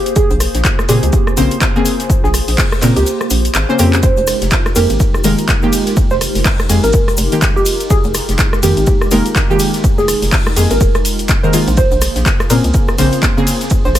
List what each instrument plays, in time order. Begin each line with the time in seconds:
Already playing: analog synth pad A#3 F4 G#4 C5
0.06 closed hi-hat, cabasa
0.16 synth pluck G#4, kick, closed hi-hat, cabasa, shaker
0.30 fm bass A#1, closed hi-hat, cabasa
0.40 cross-stick, open hi-hat, cabasa, shaker
0.55 fm bass A#1, snare, closed hi-hat, cabasa
0.64 kick, snare, clap, closed hi-hat, cabasa, shaker
0.79 cross-stick, snare, cabasa
0.88 fm bass A#2, synth stab C#3 A#3 C4 G#4, synth pluck G4, open hi-hat, cabasa, shaker
1.03 fm bass C#2, closed hi-hat, cabasa
1.13 kick, closed hi-hat, cabasa, shaker
1.27 cross-stick, cabasa
1.37 fm bass A#1, synth stab C#3 A#3 C4 C5, open hi-hat, cabasa, shaker
1.51 closed hi-hat, cabasa
1.61 kick, snare, clap, closed hi-hat, cabasa, shaker
1.75 synth stab C#3 A#3 C4 G#4, cabasa
1.85 open hi-hat, cabasa, shaker
2.00 snare, closed hi-hat, cabasa
2.10 kick, closed hi-hat, cabasa, shaker
2.24 fm bass A#1, synth pluck G#4, snare, cabasa
2.34 cross-stick, open hi-hat, cabasa, shaker
2.48 fm bass A#1, snare, open hi-hat, cabasa
2.58 kick, snare, clap, closed hi-hat, open hi-hat, cabasa
2.72 cross-stick, snare, cabasa
2.82 fm bass A#2, synth stab C#3 A#3 C4 A#4, snare, clap, open hi-hat, cabasa, shaker
2.96 fm bass C#2, synth pluck G4, snare, closed hi-hat, cabasa
3.06 closed hi-hat, cabasa, shaker
3.21 cross-stick, cabasa
3.30 fm bass A#1, open hi-hat, cabasa, shaker
3.45 closed hi-hat, cabasa
3.54 fm bass G#1, snare, clap, closed hi-hat, cabasa, shaker
3.69 synth stab C#3 A#3 C4 C5, synth pluck C#4, cabasa
3.79 fm bass F2, synth stab C#3 A#3 C4 G4, open hi-hat, cabasa
3.93 clap, closed hi-hat, cabasa
4.03 analog synth pad G#3 D#4 G4 A#4, synth pluck C5, kick, closed hi-hat, cabasa, shaker
4.17 fm bass F1, closed hi-hat, cabasa
4.27 cross-stick, open hi-hat, ride, cabasa, shaker
4.42 fm bass F1, snare, closed hi-hat, cabasa
4.51 kick, snare, clap, closed hi-hat, cabasa, shaker
4.65 cross-stick, snare, cabasa
4.75 fm bass F2, synth stab D#3 G#3 A#3 G4, synth pluck A#4, open hi-hat, ride, cabasa, shaker
4.89 fm bass G#1, closed hi-hat, cabasa
5.00 kick, closed hi-hat, cabasa, shaker
5.14 cross-stick, cabasa
5.24 fm bass F1, synth stab D#3 G#3 A#3 A#4, open hi-hat, ride, cabasa, shaker
5.38 closed hi-hat, cabasa
5.48 kick, snare, clap, closed hi-hat, cabasa, shaker
5.62 synth stab D#3 G#3 A#3 G4, cabasa
5.72 open hi-hat, ride, cabasa, shaker
5.86 snare, closed hi-hat, cabasa
5.96 kick, closed hi-hat, cabasa, shaker
6.10 fm bass F1, synth pluck C5, snare, cabasa
6.21 cross-stick, open hi-hat, ride, cabasa, shaker
6.35 fm bass F1, snare, open hi-hat, cabasa
6.45 kick, snare, clap, closed hi-hat, open hi-hat, cabasa
6.59 cross-stick, snare, cabasa
6.69 fm bass F2, synth stab D#3 G#3 A#3 G#4, open hi-hat, ride, cabasa, shaker
6.84 fm bass G#1, synth pluck A#4, closed hi-hat, cabasa
6.93 kick, closed hi-hat, cabasa, shaker
7.08 cross-stick, closed hi-hat, cabasa
7.17 fm bass F1, open hi-hat, ride, cabasa, shaker
7.32 synth stab D#3 G#3 A#3 G4, closed hi-hat, cabasa
7.42 kick, snare, clap, closed hi-hat, cabasa, shaker
7.56 synth pluck G4, cabasa
7.65 open hi-hat, ride, cabasa, shaker
7.80 closed hi-hat, cabasa
7.90 synth pluck G#4, kick, closed hi-hat, cabasa, shaker
8.04 fm bass F1, closed hi-hat, cabasa
8.14 cross-stick, open hi-hat, ride, cabasa, shaker
8.29 fm bass F1, snare, closed hi-hat, cabasa
8.38 kick, snare, clap, closed hi-hat, cabasa, shaker
8.53 cross-stick, snare, cabasa
8.63 fm bass F2, synth stab D#3 G#3 A#3 G4, synth pluck G4, open hi-hat, ride, cabasa, shaker
8.77 fm bass G#1, closed hi-hat, cabasa
8.87 kick, closed hi-hat, cabasa, shaker
9.01 cross-stick, cabasa
9.11 fm bass F1, synth stab D#3 G#3 A#3 A#4, open hi-hat, ride, cabasa, shaker
9.26 closed hi-hat, cabasa
9.35 kick, snare, clap, closed hi-hat, cabasa, shaker
9.49 synth stab D#3 G#3 A#3 G4, cabasa
9.59 open hi-hat, ride, cabasa, shaker
9.74 snare, closed hi-hat, cabasa
9.84 kick, closed hi-hat, cabasa, shaker
9.98 fm bass F1, synth pluck G#4, snare, cabasa
10.08 cross-stick, open hi-hat, ride, cabasa, shaker
10.22 fm bass F1, snare, open hi-hat, cabasa
10.32 kick, snare, clap, closed hi-hat, open hi-hat, cabasa
10.46 cross-stick, snare, cabasa
10.56 fm bass F2, synth stab D#3 G#3 A#3 G#4, open hi-hat, ride, cabasa, shaker
10.71 fm bass G#1, synth pluck A#4, closed hi-hat, cabasa
10.80 fm bass F1, kick, closed hi-hat, cabasa, shaker
10.95 cross-stick, closed hi-hat, cabasa
11.05 open hi-hat, ride, cabasa, shaker
11.19 closed hi-hat, cabasa
11.28 kick, snare, clap, closed hi-hat, cabasa, shaker
11.43 synth stab D#3 G#3 A#3 A#4, synth pluck C5, cabasa
11.53 synth stab D#3 G#3 A#3 F4, open hi-hat, ride, cabasa, shaker
11.68 fm bass A#1, closed hi-hat, cabasa
11.77 analog synth pad A#3 F4 G#4 C5, synth pluck C5, kick, closed hi-hat, cabasa, shaker
11.91 fm bass A#1, closed hi-hat, cabasa
12.01 cross-stick, open hi-hat, ride, cabasa, shaker
12.16 fm bass A#1, snare, closed hi-hat, cabasa
12.25 kick, snare, clap, closed hi-hat, cabasa, shaker
12.40 cross-stick, snare, cabasa
12.50 fm bass A#2, synth stab C#3 A#3 C4 G#4, synth pluck A#4, open hi-hat, ride, cabasa, shaker
12.64 fm bass C#2, closed hi-hat, cabasa
12.74 kick, closed hi-hat, cabasa, shaker
12.88 cross-stick, cabasa
12.98 fm bass A#1, synth stab C#3 A#3 C4 C5, open hi-hat, ride, cabasa, shaker
13.13 closed hi-hat, cabasa
13.22 kick, snare, clap, closed hi-hat, cabasa, shaker
13.37 synth stab C#3 A#3 C4 G#4, cabasa
13.47 open hi-hat, ride, cabasa, shaker
13.61 snare, closed hi-hat, cabasa
13.70 kick, closed hi-hat, cabasa, shaker
13.85 fm bass A#1, synth pluck C5, snare, cabasa
13.95 cross-stick, open hi-hat, ride, cabasa, shaker